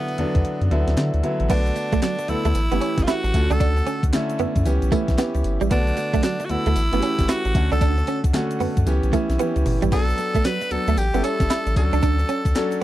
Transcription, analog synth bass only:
0.18 0.25 E2 soft
0.35 0.43 E2 medium
0.61 0.69 F#2 medium
0.71 0.84 D2 medium
0.88 0.95 D2 medium
0.97 1.11 D3 loud
1.14 1.22 D2 loud
1.40 1.48 A1 medium
1.50 1.71 B1 loud
1.92 2.00 B1 loud
2.29 2.35 D2 soft
2.45 2.53 D2 medium
2.55 2.68 A1 loud
2.71 2.79 G1 loud
2.98 3.06 G1 medium
3.24 3.32 A1 loud
3.34 3.47 D2 loud
3.50 3.58 C#2 loud
3.60 3.82 D2 loud
4.03 4.11 D2 medium
4.39 4.46 F#2 soft
4.56 4.64 F#2 medium
4.66 4.79 C#2 loud
4.82 4.90 B1 medium
5.08 5.16 B1 loud
5.35 5.43 C#2 medium
5.44 5.58 G1 loud
5.61 5.69 A1 medium
5.71 5.92 B1 loud
6.14 6.22 B1 medium
6.50 6.57 D2 soft
6.66 6.74 D2 medium
6.76 6.89 A1 loud
6.93 7.01 G1 loud
7.19 7.27 G1 medium
7.45 7.53 A1 medium
7.55 7.69 D2 loud
7.72 7.80 C#2 medium
7.81 8.03 D2 loud
8.24 8.32 D2 medium
8.60 8.67 F#2 soft
8.77 8.85 F#2 medium
8.87 9.00 C#2 loud
9.03 9.11 B1 medium
9.30 9.37 B1 medium
9.56 9.64 C#2 loud
9.66 9.79 G1 loud
9.82 9.90 A1 medium
9.92 10.13 B1 loud
10.35 10.43 B1 loud
10.71 10.78 D2 soft
10.88 10.95 D2 medium
10.97 11.11 A1 loud
11.14 11.22 G1 loud
11.40 11.48 G1 medium
11.66 11.74 A1 loud
11.76 11.90 D2 loud
11.93 12.01 C#2 loud
12.03 12.24 D2 loud
12.45 12.53 D2 medium

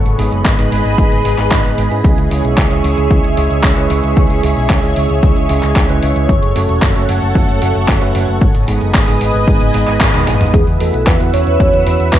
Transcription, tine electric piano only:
0.19 0.55 G#3 medium
0.19 0.55 B3 medium
0.19 0.55 D#4 medium
0.19 0.55 G#4 medium
0.58 0.95 G#3 medium
0.58 0.95 B3 medium
0.58 0.95 D#4 medium
0.58 0.95 G#4 medium
0.98 1.22 G#3 medium
0.98 1.22 B3 medium
0.98 1.22 D#4 medium
0.98 1.22 G#4 medium
1.38 1.48 G#3 medium
1.38 1.48 B3 medium
1.38 1.48 D#4 medium
1.38 1.48 B4 medium
1.51 1.88 G#3 medium
1.51 1.88 B3 medium
1.51 1.88 D#4 medium
1.51 1.88 B4 loud
1.91 2.28 G#3 medium
1.91 2.28 C#4 medium
1.91 2.28 E4 medium
1.91 2.28 G#4 medium
2.31 2.68 G#3 medium
2.31 2.68 C#4 medium
2.31 2.68 E4 medium
2.31 2.68 G#4 medium
2.71 3.08 G#3 medium
2.71 3.08 C#4 medium
2.71 3.07 E4 medium
2.71 3.08 G#4 medium
3.11 3.35 G#3 medium
3.11 3.35 C#4 medium
3.11 3.35 E4 medium
3.11 3.35 G#4 medium
3.37 3.74 G#3 medium
3.37 3.74 C#4 medium
3.37 3.74 E4 medium
3.37 3.74 G#4 medium
3.77 4.40 G#3 medium
3.77 4.40 C#4 medium
3.77 4.40 E4 medium
3.77 4.40 B4 loud
4.43 4.80 G#3 medium
4.43 4.80 C#4 medium
4.43 4.80 E4 medium
4.43 4.80 G#4 medium
4.83 5.20 G#3 medium
4.83 5.20 C#4 medium
4.83 5.20 E4 medium
4.83 5.20 G#4 medium
5.23 5.47 G#3 medium
5.23 5.47 C#4 medium
5.23 5.47 E4 medium
5.23 5.47 G#4 medium
5.50 5.86 G#3 medium
5.50 5.86 C#4 medium
5.50 5.86 E4 medium
5.50 5.86 G#4 medium
5.89 6.28 G#3 medium
5.89 6.28 C#4 medium
5.89 6.28 E4 medium
5.89 6.28 B4 loud
6.56 6.92 A3 medium
6.56 6.92 C#4 medium
6.56 6.92 F#4 medium
6.56 6.92 A4 medium
6.96 7.32 A3 medium
6.96 7.32 C#4 medium
6.96 7.32 F#4 medium
6.96 7.32 A4 medium
7.35 7.59 A3 medium
7.35 7.59 C#4 medium
7.35 7.59 F#4 medium
7.35 7.59 A4 medium
7.62 7.99 A3 medium
7.62 7.99 C#4 medium
7.62 7.99 F#4 medium
7.62 7.99 A4 medium
8.02 8.40 A3 medium
8.02 8.40 C#4 medium
8.02 8.40 F#4 medium
8.02 8.40 B4 loud
8.68 9.05 G#3 medium
8.68 9.05 B3 medium
8.68 9.05 D#4 medium
8.68 9.05 G#4 medium
9.08 9.45 G#3 medium
9.08 9.45 B3 medium
9.08 9.45 D#4 medium
9.08 9.45 G#4 medium
9.48 9.72 G#3 medium
9.48 9.72 B3 medium
9.48 9.72 D#4 medium
9.48 9.72 G#4 medium
9.74 10.11 G#3 medium
9.74 10.11 B3 medium
9.74 10.11 D#4 medium
9.74 10.11 G#4 medium
10.14 10.52 G#3 loud
10.14 10.52 B3 medium
10.14 10.52 D#4 medium
10.14 10.52 B4 loud
10.81 11.17 B3 medium
10.81 11.17 E4 medium
10.81 11.17 F#4 medium
10.81 11.17 B4 medium
11.20 11.57 B3 medium
11.20 11.57 E4 medium
11.20 11.57 F#4 medium
11.20 11.57 B4 medium
11.60 11.84 B3 medium
11.60 11.84 E4 medium
11.60 11.84 F#4 medium
11.60 11.84 B4 medium
11.87 12.19 B3 medium
11.87 12.19 E4 medium
11.87 12.19 F#4 medium
11.87 12.19 B4 medium

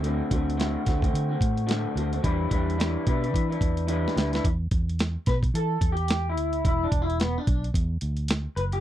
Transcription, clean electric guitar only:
0.03 0.29 D3 medium
0.03 0.30 A3 medium
0.03 0.31 C4 medium
0.03 0.31 F#4 medium
0.30 0.56 D3 medium
0.30 0.56 A3 medium
0.30 0.56 C4 medium
0.30 0.57 F#4 medium
0.57 0.84 D3 medium
0.57 0.84 A3 medium
0.57 0.85 C4 medium
0.57 0.86 F#4 medium
0.85 1.03 D3 medium
0.85 1.02 A3 medium
0.85 1.02 C4 soft
0.85 1.01 F#4 medium
1.02 1.30 A3 soft
1.02 1.29 C4 soft
1.02 1.28 F#4 medium
1.29 1.66 A3 soft
1.29 1.66 C4 soft
1.29 1.67 F#4 medium
1.66 1.94 D3 medium
1.66 1.95 A3 medium
1.66 1.96 C4 medium
1.66 1.96 F#4 medium
1.95 2.12 D3 medium
1.95 2.13 A3 medium
1.95 2.12 C4 medium
1.95 2.11 F#4 medium
2.12 2.23 A3 soft
2.12 2.23 C4 soft
2.12 2.23 F#4 soft
2.22 2.51 E3 medium
2.22 2.48 G3 medium
2.22 2.49 D4 medium
2.22 2.50 E4 medium
2.22 2.51 B4 medium
2.50 2.77 G3 medium
2.50 2.77 D4 medium
2.50 2.78 E4 medium
2.50 2.78 B4 medium
2.78 3.06 E3 medium
2.78 3.05 G3 medium
2.78 3.05 D4 medium
2.78 3.06 E4 medium
2.78 3.06 B4 medium
3.06 3.23 G3 medium
3.06 3.23 D4 medium
3.06 3.21 E4 medium
3.06 3.20 B4 medium
3.21 3.50 D4 soft
3.21 3.49 E4 soft
3.21 3.48 B4 medium
3.49 3.87 D4 soft
3.49 3.87 E4 medium
3.49 3.87 B4 medium
3.87 4.16 E3 medium
3.87 4.14 G3 medium
3.87 4.15 D4 medium
3.87 4.16 E4 medium
3.87 4.17 B4 medium
4.15 4.33 G3 medium
4.15 4.33 D4 medium
4.15 4.33 E4 medium
4.15 4.31 B4 medium
4.32 4.45 D4 soft
4.32 4.45 E4 medium
4.32 4.44 B4 medium
5.27 5.35 B4 medium
5.55 5.92 A4 medium
5.92 6.29 G4 medium
6.30 6.63 E4 medium
6.67 6.85 E4 medium
6.84 7.02 D4 medium
7.02 7.20 E4 medium
7.20 7.38 B3 medium
7.38 7.66 D4 medium
8.56 8.61 B4 medium
8.73 8.80 G4 medium

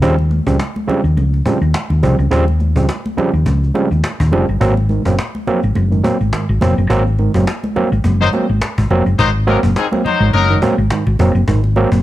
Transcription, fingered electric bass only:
0.03 0.39 D#2 loud
0.47 0.57 C#2 medium
0.88 muted fingered electric bass stroke medium
1.04 1.14 D#2 medium
1.17 1.40 C#2 medium
1.62 1.72 D#2 medium
1.90 2.01 D#2 medium
2.04 2.16 C2 medium
2.19 2.29 C#2 loud
2.32 2.76 D#2 loud
2.76 2.86 C#2 medium
3.17 muted fingered electric bass stroke soft
3.33 3.44 D#2 medium
3.46 3.70 C#2 loud
3.91 4.01 D#2 medium
4.20 4.30 D#2 loud
4.33 4.46 F1 loud
4.49 4.59 G1 loud
4.61 4.98 G#1 loud
5.06 5.16 F#1 loud
5.48 muted fingered electric bass stroke soft
5.64 5.74 G#1 medium
5.76 5.99 F#1 medium
6.21 6.31 G#1 medium
6.49 6.59 G#1 medium
6.62 6.75 F1 medium
6.78 6.88 F#1 medium
6.90 7.27 G#1 loud
7.35 7.45 F#1 loud
7.77 muted fingered electric bass stroke soft
7.92 8.02 G#1 medium
8.04 8.28 F#1 medium
8.49 8.60 G#1 medium
8.78 8.88 G#1 medium
8.90 9.03 F1 medium
9.06 9.17 F#1 medium
9.19 9.56 G#1 loud
9.63 9.74 F#1 loud
10.05 muted fingered electric bass stroke soft
10.20 10.31 G#1 medium
10.34 10.57 F#1 medium
10.78 10.88 G#1 medium
11.07 11.17 G#1 loud
11.20 11.33 F1 medium
11.35 11.45 F#1 medium
11.48 11.84 G#1 loud
11.92 12.02 F#1 medium

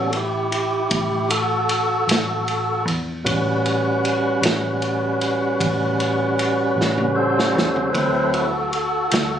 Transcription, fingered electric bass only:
0.00 0.87 A1 medium
0.91 2.04 A1 loud
2.07 2.85 A1 medium
2.85 3.22 E2 medium
3.25 4.39 A1 medium
4.42 5.55 A1 medium
5.61 6.74 A1 loud
6.76 7.55 A1 medium
7.55 7.91 E2 medium
7.94 9.08 D2 medium
9.12 9.39 D2 medium

